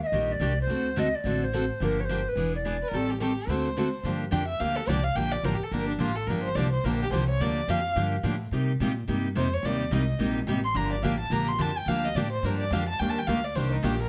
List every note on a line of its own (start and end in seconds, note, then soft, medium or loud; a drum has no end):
0.03 0.33 D#5 medium
0.03 0.07 E5 medium
0.12 0.36 A#1 medium
0.12 0.32 D#3 medium
0.12 0.32 G3 medium
0.12 0.32 A#3 medium
0.12 0.32 D4 medium
0.12 0.32 G4 medium
0.32 0.58 D5 medium
0.39 0.64 C2 medium
0.39 0.51 D#3 medium
0.39 0.51 G3 medium
0.39 0.51 A#3 medium
0.39 0.52 D4 medium
0.39 0.52 G4 medium
0.61 1.00 C5 medium
0.67 1.12 D2 medium
0.67 0.87 D3 medium
0.67 0.88 A3 medium
0.67 0.88 C4 medium
0.67 0.88 F#4 medium
0.67 0.88 A4 medium
0.96 1.07 D3 medium
0.96 1.07 A3 medium
0.96 1.07 C4 medium
0.96 1.07 F#4 medium
0.96 1.07 A4 medium
0.96 1.16 D#5 medium
1.15 1.45 D5 medium
1.24 1.69 A1 medium
1.24 1.44 D3 medium
1.24 1.44 A3 medium
1.24 1.44 C4 medium
1.24 1.44 F#4 medium
1.24 1.44 A4 medium
1.44 1.85 C5 medium
1.53 1.63 D3 medium
1.53 1.64 A3 medium
1.53 1.64 C4 medium
1.53 1.64 F#4 medium
1.53 1.64 A4 medium
1.80 2.25 G1 medium
1.80 2.00 D3 medium
1.80 2.00 F3 medium
1.80 2.00 A#3 medium
1.80 2.00 D4 medium
1.80 2.00 G4 medium
1.80 2.01 A#4 medium
2.00 2.05 C#5 medium
2.04 2.30 C5 medium
2.09 2.19 D3 medium
2.09 2.20 F3 medium
2.09 2.19 A#3 medium
2.09 2.20 D4 medium
2.09 2.20 G4 medium
2.28 2.55 B4 medium
2.35 2.81 E1 medium
2.35 2.56 E3 medium
2.35 2.55 B3 medium
2.35 2.56 D4 medium
2.35 2.56 G#4 medium
2.55 3.06 D5 medium
2.65 2.75 E3 medium
2.65 2.75 B3 medium
2.65 2.76 D4 medium
2.65 2.76 G#4 medium
2.82 2.89 B4 medium
2.88 3.36 A1 medium
2.88 2.96 A#4 medium
2.93 3.12 D#3 medium
2.93 3.12 G3 medium
2.93 3.12 C4 medium
2.93 3.12 G4 medium
2.93 3.12 A4 medium
3.10 3.20 G4 medium
3.20 3.31 D#3 medium
3.20 3.31 G3 medium
3.20 3.31 C4 medium
3.20 3.50 G4 medium
3.20 3.31 G4 medium
3.20 3.32 A4 medium
3.47 3.92 D2 medium
3.47 3.68 D3 medium
3.47 3.68 A3 medium
3.47 3.68 C4 medium
3.47 3.68 F#4 medium
3.47 3.68 A4 medium
3.47 4.04 C5 medium
3.77 3.87 D3 medium
3.77 3.87 A3 medium
3.77 3.87 C4 medium
3.77 3.88 F#4 medium
3.77 3.88 A4 medium
4.03 4.31 G2 medium
4.03 4.23 D3 medium
4.03 4.23 F3 medium
4.03 4.24 A#3 medium
4.03 4.24 D4 medium
4.03 4.24 G4 medium
4.31 4.59 F2 medium
4.31 4.42 D3 medium
4.31 4.42 F3 medium
4.31 4.42 A#3 medium
4.31 4.43 D4 loud
4.31 4.43 G4 medium
4.31 4.47 G5 medium
4.48 4.61 E5 medium
4.60 4.86 D2 medium
4.60 4.79 D3 medium
4.60 4.79 F3 medium
4.60 4.79 A#3 medium
4.60 4.79 D4 medium
4.60 4.79 G4 medium
4.60 4.77 F5 medium
4.76 4.90 A4 medium
4.87 5.14 C2 medium
4.87 4.99 D3 medium
4.87 4.99 F3 medium
4.87 4.99 A#3 medium
4.87 4.99 D4 medium
4.87 4.99 G4 medium
4.87 5.05 D5 medium
5.03 5.17 F5 medium
5.15 5.43 A#1 medium
5.15 5.35 D3 medium
5.15 5.35 F3 medium
5.15 5.35 A#3 medium
5.15 5.35 D4 medium
5.15 5.36 G4 medium
5.15 5.33 G5 medium
5.31 5.46 D5 medium
5.43 5.59 A1 medium
5.43 5.55 D3 medium
5.43 5.55 F3 medium
5.43 5.55 A#3 medium
5.43 5.55 D4 medium
5.43 5.55 G4 medium
5.43 5.55 A#4 medium
5.54 5.65 G4 medium
5.60 5.73 A4 medium
5.60 muted upright bass stroke soft
5.71 5.98 G1 medium
5.71 5.91 D3 medium
5.71 5.91 F3 medium
5.71 5.92 A#3 medium
5.71 5.92 D4 medium
5.71 5.91 G4 medium
5.71 5.88 A#4 medium
5.89 6.01 D4 soft
5.99 6.26 A1 medium
5.99 6.10 D3 medium
5.99 6.10 F3 medium
5.99 6.11 A#3 medium
5.99 6.11 D4 medium
5.99 6.17 F4 medium
5.99 6.11 G4 medium
6.15 6.28 A4 medium
6.27 6.54 G1 medium
6.27 6.47 D3 medium
6.27 6.48 F3 medium
6.27 6.48 A#3 medium
6.27 6.48 D4 medium
6.27 6.48 G4 medium
6.27 6.43 A#4 medium
6.43 6.57 C5 medium
6.55 6.83 C2 medium
6.55 6.67 D3 medium
6.55 6.67 F3 medium
6.55 6.67 A#3 medium
6.55 6.67 D4 medium
6.55 6.67 G4 loud
6.55 6.72 D5 medium
6.72 6.86 C5 medium
6.84 7.10 A#1 medium
6.84 7.03 D3 medium
6.84 7.03 F3 medium
6.84 7.04 A#3 medium
6.84 7.04 D4 medium
6.84 7.04 G4 medium
6.84 7.01 A#4 medium
7.02 7.08 G4 medium
7.11 7.39 C2 medium
7.11 7.23 D3 medium
7.11 7.23 F3 medium
7.11 7.23 A#3 medium
7.11 7.23 D4 medium
7.11 7.23 G4 medium
7.11 7.28 C5 medium
7.29 7.42 C#5 medium
7.40 7.67 D2 medium
7.40 7.59 D3 medium
7.40 7.59 F3 medium
7.40 7.59 A#3 medium
7.40 7.59 D4 medium
7.40 7.60 G4 medium
7.40 7.71 D5 medium
7.67 7.95 F2 medium
7.67 7.79 D3 medium
7.67 7.79 F3 medium
7.67 7.79 A#3 medium
7.67 7.79 D4 medium
7.67 7.79 G4 medium
7.67 7.97 F5 medium
7.96 8.23 G2 medium
7.96 8.15 D3 medium
7.96 8.15 F3 medium
7.96 8.15 A#3 medium
7.96 8.15 D4 medium
7.96 8.15 G4 medium
8.23 8.51 A2 medium
8.23 8.34 D3 medium
8.23 8.34 F3 medium
8.23 8.34 A#3 medium
8.23 8.35 D4 medium
8.23 8.35 G4 medium
8.51 8.79 C3 medium
8.51 8.71 C3 medium
8.51 8.71 G3 medium
8.51 8.71 A#3 medium
8.51 8.71 D#4 medium
8.51 8.71 G4 medium
8.80 9.07 A#2 medium
8.80 8.91 C3 medium
8.80 8.91 G3 medium
8.80 8.91 A#3 medium
8.80 8.91 D#4 medium
8.80 8.92 G4 loud
9.08 9.35 G2 medium
9.08 9.27 C3 medium
9.08 9.27 G3 medium
9.08 9.27 A#3 medium
9.08 9.27 D#4 medium
9.08 9.27 G4 medium
9.35 9.62 F2 medium
9.35 9.46 C3 medium
9.35 9.46 G3 medium
9.35 9.46 A#3 medium
9.35 9.47 D#4 medium
9.35 9.47 G4 medium
9.35 9.55 C5 medium
9.53 9.66 C#5 medium
9.63 9.90 D#2 medium
9.63 9.83 C3 medium
9.63 9.83 G3 medium
9.63 9.83 A#3 medium
9.63 9.83 D#4 medium
9.63 9.83 G4 medium
9.63 9.94 D5 medium
9.91 10.18 C2 medium
9.91 10.02 C3 medium
9.91 10.02 G3 medium
9.91 10.02 A#3 medium
9.91 10.03 D#4 medium
9.91 10.03 G4 medium
9.91 10.20 D#5 medium
10.19 10.46 A#1 medium
10.19 10.38 C3 medium
10.19 10.39 G3 medium
10.19 10.39 A#3 medium
10.19 10.39 D#4 medium
10.19 10.39 G4 medium
10.47 10.74 A1 medium
10.47 10.58 C3 medium
10.47 10.58 G3 medium
10.47 10.59 A#3 medium
10.47 10.59 D#4 medium
10.47 10.59 G4 medium
10.64 10.77 C6 loud
10.74 11.02 G1 medium
10.74 10.94 D3 medium
10.74 10.94 F3 medium
10.74 10.94 A#3 medium
10.74 10.94 D4 medium
10.74 10.95 G4 medium
10.74 10.92 A#5 medium
10.92 11.04 D5 medium
11.02 11.29 A1 medium
11.02 11.14 D3 medium
11.02 11.14 F3 medium
11.02 11.15 A#3 medium
11.02 11.14 D4 medium
11.02 11.14 G4 loud
11.02 11.19 F5 medium
11.19 11.33 A5 medium
11.30 11.58 A#1 medium
11.30 11.50 D3 medium
11.30 11.50 F3 medium
11.30 11.51 A#3 medium
11.30 11.51 D4 medium
11.30 11.51 G4 medium
11.30 11.49 A#5 medium
11.48 11.62 C6 loud
11.58 11.85 F2 medium
11.58 11.70 D3 medium
11.58 11.70 F3 medium
11.58 11.70 A#3 medium
11.58 11.70 D4 medium
11.58 11.70 G4 medium
11.58 11.78 A5 medium
11.77 11.90 G5 medium
11.86 12.14 D2 medium
11.86 12.07 D3 medium
11.86 12.07 F3 medium
11.86 12.07 A#3 medium
11.86 12.07 D4 medium
11.86 12.07 G4 medium
11.86 12.06 F5 medium
12.05 12.17 D#5 medium
12.15 12.42 A2 medium
12.15 12.26 D3 medium
12.15 12.27 F3 loud
12.15 12.27 A#3 medium
12.15 12.27 D4 medium
12.15 12.27 G4 medium
12.15 12.31 D5 medium
12.32 12.46 C5 medium
12.43 12.70 G2 medium
12.43 12.63 D3 medium
12.43 12.63 F3 medium
12.43 12.63 A#3 medium
12.43 12.63 D4 medium
12.43 12.63 G4 medium
12.43 12.59 A#4 medium
12.60 12.74 D5 medium
12.71 12.98 F2 medium
12.71 12.82 D3 medium
12.71 12.82 F3 medium
12.71 12.83 A#3 medium
12.71 12.83 D4 medium
12.71 12.83 G4 medium
12.71 12.88 F5 medium
12.89 13.01 A5 loud
12.99 13.26 D#2 medium
12.99 13.19 D#3 medium
12.99 13.19 G3 medium
12.99 13.19 A#3 medium
12.99 13.19 D4 medium
12.99 13.20 G4 medium
12.99 13.11 G5 medium
13.09 13.20 A5 loud
13.18 13.28 G5 medium
13.27 13.54 D2 medium
13.27 13.38 D#3 medium
13.27 13.38 G3 medium
13.27 13.39 A#3 medium
13.27 13.39 D4 loud
13.27 13.39 G4 loud
13.27 13.45 F5 medium
13.44 13.57 D5 medium
13.55 13.82 C2 medium
13.55 13.74 D#3 medium
13.55 13.75 G3 medium
13.55 13.75 A#3 medium
13.55 13.75 D4 medium
13.55 13.75 G4 medium
13.55 13.71 C5 medium
13.72 13.85 D#4 medium
13.83 14.09 A#1 medium
13.83 13.94 D#3 medium
13.83 13.94 G3 medium
13.83 13.94 A#3 medium
13.83 13.94 D4 medium
13.83 14.01 G4 medium
13.83 13.95 G4 medium
14.00 14.09 A#4 loud